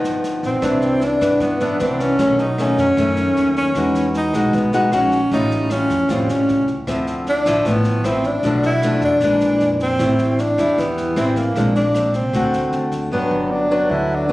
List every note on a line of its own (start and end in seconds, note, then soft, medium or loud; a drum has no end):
0.00 0.39 G1 medium
0.00 0.61 G2 soft
0.00 0.59 F3 soft
0.00 0.59 B3 medium
0.00 0.60 D#4 medium
0.04 snare soft
0.24 snare soft
0.43 0.61 A#1 medium
0.43 1.06 C4 medium
0.43 kick soft
0.43 snare soft
0.62 1.17 C2 loud
0.62 1.38 C3 medium
0.62 1.18 E3 soft
0.62 1.18 D4 medium
0.62 kick medium
0.62 cross-stick medium
0.62 snare soft
0.82 snare soft
1.01 1.43 D4 medium
1.01 snare soft
1.21 1.39 G2 medium
1.21 1.57 E3 medium
1.21 1.57 B3 medium
1.21 1.58 D4 medium
1.21 kick soft
1.21 cross-stick medium
1.21 snare soft
1.40 1.77 G2 medium
1.40 2.17 G2 medium
1.40 1.83 B3 medium
1.40 kick medium
1.40 snare soft
1.60 1.77 E3 medium
1.60 1.77 B3 medium
1.60 1.77 D4 medium
1.60 snare soft
1.80 2.16 C2 medium
1.80 2.18 E3 medium
1.80 2.18 B3 medium
1.80 2.02 C4 medium
1.80 2.18 D4 medium
1.80 cross-stick medium
1.80 snare soft
1.99 2.41 C#4 medium
1.99 kick soft
1.99 snare soft
2.19 2.74 B1 loud
2.19 2.95 B2 medium
2.19 2.44 D#3 medium
2.19 2.45 A3 medium
2.19 2.45 C#4 medium
2.19 kick medium
2.19 snare soft
2.39 2.81 D#4 loud
2.39 snare soft
2.58 2.84 D#3 medium
2.58 2.84 A3 medium
2.58 2.84 C#4 medium
2.58 cross-stick medium
2.58 snare soft
2.78 2.96 F#2 medium
2.78 3.57 C#4 loud
2.78 kick soft
2.78 snare soft
2.97 3.34 F#2 medium
2.97 3.74 F#2 medium
2.97 3.73 D#3 medium
2.97 3.73 A3 medium
2.97 3.73 C#4 medium
2.97 kick medium
2.97 cross-stick medium
2.97 snare soft
3.17 snare soft
3.36 3.73 D#2 medium
3.36 snare soft
3.56 4.11 C#4 medium
3.56 kick soft
3.56 snare soft
3.75 4.30 E2 loud
3.75 4.52 E3 medium
3.75 4.31 G#3 medium
3.75 4.31 D#4 medium
3.75 4.32 F#4 medium
3.75 kick medium
3.75 cross-stick medium
3.75 snare soft
3.95 snare soft
4.14 4.56 D#4 medium
4.14 snare soft
4.34 4.52 B1 medium
4.34 4.70 G#3 medium
4.34 4.70 D#4 medium
4.34 4.71 F#4 medium
4.34 kick soft
4.34 cross-stick medium
4.34 snare soft
4.53 4.90 B1 medium
4.53 4.96 B3 medium
4.53 kick medium
4.53 snare soft
4.73 4.90 G#3 medium
4.73 4.90 D#4 medium
4.73 4.90 F#4 medium
4.73 snare soft
4.92 5.29 A#1 medium
4.92 5.19 G#3 medium
4.92 5.32 C#4 medium
4.92 5.19 D#4 medium
4.92 5.19 F#4 medium
4.92 cross-stick medium
4.92 snare soft
5.12 kick soft
5.12 snare soft
5.31 5.86 A1 loud
5.31 6.08 A2 medium
5.31 5.68 G3 medium
5.31 5.68 C#4 medium
5.31 5.73 D#4 medium
5.31 5.68 F4 medium
5.31 kick medium
5.31 snare soft
5.51 snare soft
5.70 5.96 G3 soft
5.70 6.13 C#4 medium
5.70 5.96 C#4 soft
5.70 5.97 F4 medium
5.70 cross-stick medium
5.70 snare soft
5.90 6.08 F2 medium
5.90 kick soft
5.90 snare soft
6.09 6.28 F2 medium
6.09 6.86 A2 medium
6.09 6.62 G3 soft
6.09 6.32 C4 medium
6.09 6.62 C#4 medium
6.09 6.63 F4 medium
6.09 kick medium
6.09 cross-stick medium
6.09 snare soft
6.29 6.47 A1 medium
6.29 6.69 C#4 medium
6.29 snare soft
6.49 6.66 C2 medium
6.49 snare soft
6.68 6.85 C#2 medium
6.68 kick soft
6.68 snare soft
6.87 7.42 D2 loud
6.87 7.64 D3 medium
6.87 7.26 F3 medium
6.87 7.27 C4 soft
6.87 7.27 E4 medium
6.87 kick medium
6.87 cross-stick medium
6.87 snare soft
7.07 snare soft
7.27 7.69 D4 loud
7.27 snare soft
7.46 7.64 A1 medium
7.46 8.01 F3 medium
7.46 8.02 E4 medium
7.46 kick soft
7.46 cross-stick medium
7.46 snare soft
7.65 8.02 A1 medium
7.65 8.42 A2 medium
7.65 8.07 B3 medium
7.65 kick medium
7.65 snare soft
7.84 snare soft
8.04 8.41 A1 medium
8.04 8.31 F3 medium
8.04 8.31 C4 medium
8.04 8.28 C4 medium
8.04 8.31 E4 medium
8.04 cross-stick medium
8.04 snare soft
8.24 8.64 D4 loud
8.24 kick soft
8.24 snare soft
8.43 8.98 B1 loud
8.43 9.20 B2 medium
8.43 8.69 F3 medium
8.43 8.69 A3 medium
8.43 8.69 D4 medium
8.43 kick medium
8.43 snare soft
8.63 9.01 E4 loud
8.63 snare soft
8.82 9.19 F3 medium
8.82 9.19 A3 medium
8.82 9.19 D4 medium
8.82 cross-stick medium
8.82 snare soft
9.01 9.20 F2 medium
9.01 9.77 D4 loud
9.01 kick soft
9.01 snare soft
9.21 9.58 A#1 medium
9.21 9.98 A#2 medium
9.21 9.74 E3 medium
9.21 9.75 G#3 medium
9.21 9.75 D4 medium
9.21 kick medium
9.21 cross-stick medium
9.21 snare soft
9.41 snare soft
9.60 9.97 F2 medium
9.60 snare soft
9.80 10.41 C4 medium
9.80 kick soft
9.80 snare soft
9.99 10.54 A1 loud
9.99 10.75 A2 medium
9.99 10.39 G3 medium
9.99 10.39 C4 medium
9.99 10.39 E4 medium
9.99 kick medium
9.99 cross-stick medium
9.99 snare soft
10.19 snare soft
10.39 10.81 D4 medium
10.39 snare soft
10.58 10.76 E2 medium
10.58 11.13 G3 medium
10.58 11.14 E4 medium
10.58 kick soft
10.58 cross-stick medium
10.58 snare soft
10.78 11.14 E2 medium
10.78 11.54 E3 medium
10.78 11.18 B3 medium
10.78 kick medium
10.78 snare soft
10.98 snare soft
11.16 11.53 A1 medium
11.16 11.43 G3 medium
11.16 11.43 C4 medium
11.16 11.38 C4 medium
11.16 11.43 E4 medium
11.16 cross-stick medium
11.16 snare soft
11.36 11.75 A#3 medium
11.36 kick soft
11.36 snare soft
11.56 12.10 A#1 loud
11.56 12.32 A#2 medium
11.56 11.81 G#3 medium
11.56 11.81 C4 soft
11.56 11.81 D4 medium
11.56 kick medium
11.56 snare soft
11.75 12.12 D4 medium
11.75 snare soft
11.94 12.20 G#3 soft
11.94 12.20 C4 soft
11.94 12.20 D4 medium
11.94 cross-stick medium
11.94 snare soft
12.14 12.32 C2 medium
12.14 12.89 C4 medium
12.14 kick soft
12.14 snare soft
12.33 12.70 D2 medium
12.33 13.10 D3 medium
12.33 13.09 A3 medium
12.33 13.09 C4 medium
12.33 13.09 F#4 medium
12.33 kick medium
12.33 cross-stick medium
12.33 snare soft
12.53 snare soft
12.73 13.09 D2 medium
12.73 snare soft
12.92 kick soft
12.92 snare soft
13.12 13.30 G1 medium
13.12 13.88 G2 soft
13.12 13.67 F#3 medium
13.12 13.52 B3 medium
13.12 13.67 B3 medium
13.12 13.68 D4 medium
13.31 13.85 G1 medium
13.51 13.91 D4 medium
13.71 14.26 F#3 medium
13.71 14.26 B3 medium
13.71 14.26 D4 medium
13.90 14.32 D2 medium
13.90 14.32 D3 medium
13.90 14.16 E4 medium
14.15 14.32 D4 medium
14.29 14.32 F#3 medium
14.29 14.32 B3 medium